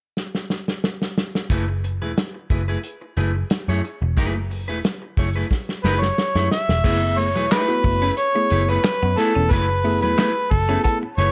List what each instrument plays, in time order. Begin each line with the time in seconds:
0.17 snare
0.35 snare
0.50 snare
0.68 snare
0.84 snare
1.02 snare
1.18 snare
1.35 snare
1.50 picked electric bass F#1, clean electric guitar A3 E4 G#4 B4, kick, closed hi-hat
1.69 muted clean electric guitar stroke
1.84 muted clean electric guitar stroke, closed hi-hat
2.01 picked electric bass E1, clean electric guitar A3 E4 G#4 B4
2.17 muted clean electric guitar stroke, snare, closed hi-hat
2.34 muted clean electric guitar stroke
2.50 picked electric bass F#1, clean electric guitar A3 E4 G#4 B4, kick, closed hi-hat
2.68 clean electric guitar A3 E4 G#4 B4
2.83 closed hi-hat
3.01 muted clean electric guitar stroke
3.17 picked electric bass F#1, clean electric guitar A3 E4 G#4 B4, closed hi-hat
3.35 muted clean electric guitar stroke
3.50 muted clean electric guitar stroke, snare, closed hi-hat
3.68 picked electric bass F#2, clean electric guitar A3 E4 G#4 C#5
3.84 muted clean electric guitar stroke, closed hi-hat
4.02 picked electric bass E1, muted clean electric guitar stroke
4.17 picked electric bass F#1, clean electric guitar A3 E4 G#4 B4, kick, closed hi-hat
4.35 muted clean electric guitar stroke
4.50 muted clean electric guitar stroke, open hi-hat
4.68 picked electric bass E1, clean electric guitar A3 E4 G#4 B4
4.85 muted clean electric guitar stroke, snare, closed hi-hat
5.02 muted clean electric guitar stroke
5.17 picked electric bass F#1, clean electric guitar A3 E4 G#4 C#5, kick, open hi-hat
5.36 clean electric guitar A3 E4 G#4 B4
5.51 kick, snare
5.69 muted clean electric guitar stroke, snare
5.84 picked electric bass F#1, clean electric guitar A3 E4 G#4 B4, harmonica B4, snare
6.01 harmonica C#5, muted clean electric guitar stroke, snare
6.18 muted clean electric guitar stroke, snare
6.35 picked electric bass F#2, clean electric guitar A3 E4 G#4 C#5, snare
6.51 harmonica E5, muted clean electric guitar stroke, snare
6.69 picked electric bass E1, muted clean electric guitar stroke, snare
6.84 picked electric bass F#1, tine electric piano A3 B3 E4 G#4, clean electric guitar A3 E4 G#4 B4, kick, crash
7.02 muted clean electric guitar stroke
7.18 clean electric guitar A3, harmonica C#5, muted clean electric guitar stroke, open hi-hat
7.35 picked electric bass E1, clean electric guitar F#3 A3 E4 G#4 B4
7.51 clean electric guitar A3 E4 G#4 B4, harmonica B4, muted clean electric guitar stroke, snare, clap, closed hi-hat
7.68 tine electric piano A3 B3 E4 F#4
7.84 picked electric bass F#1, clean electric guitar A3, muted clean electric guitar stroke, kick, open hi-hat
8.02 clean electric guitar A3 C#4 E4 G#4 B4
8.17 harmonica C#5, muted clean electric guitar stroke, closed hi-hat
8.35 tine electric piano A3 B3 E4 G#4, clean electric guitar A3, muted clean electric guitar stroke
8.50 picked electric bass F#1, clean electric guitar A3 E4 G#4 B4, muted clean electric guitar stroke, closed hi-hat
8.68 clean electric guitar A3 E4 G#4 B4, harmonica B4
8.84 snare, clap, closed hi-hat
9.03 picked electric bass F#2, clean electric guitar B3, muted clean electric guitar stroke
9.17 clean electric guitar A3 E4 G#4 B4, tine electric piano A3 B3 E4 A4, harmonica A4, muted clean electric guitar stroke, closed hi-hat
9.35 picked electric bass E1, clean electric guitar C#4, muted clean electric guitar stroke
9.51 picked electric bass F#1, clean electric guitar A3 E4 G#4 B4, harmonica B4, kick, closed hi-hat
9.70 muted clean electric guitar stroke
9.84 tine electric piano A3 B3 E4 G#4, clean electric guitar A3, muted clean electric guitar stroke, open hi-hat
10.01 picked electric bass E1, clean electric guitar F#3 A3 E4 G#4 B4, harmonica B4
10.18 clean electric guitar A3 E4 G#4 B4, snare, clap, closed hi-hat
10.51 picked electric bass F#1, harmonica A4, muted clean electric guitar stroke, kick, open hi-hat
10.69 tine electric piano A3 B3 E4 G#4, clean electric guitar A3 C#4 E4 G#4 B4
10.84 clean electric guitar B3, harmonica A4, muted clean electric guitar stroke, kick, closed hi-hat
11.03 muted clean electric guitar stroke
11.18 picked electric bass F#1, clean electric guitar A3 E4 G#4 B4, harmonica C#5, closed hi-hat